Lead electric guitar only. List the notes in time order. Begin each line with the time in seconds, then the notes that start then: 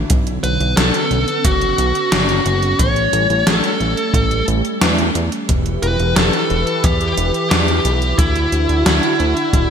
0.44 B4
0.77 A4
1.45 F#4
2.12 F#4
2.80 C#5
3.47 A4
5.83 B4
6.17 A4
6.84 G4
7.51 G4
8.19 E4
8.86 E4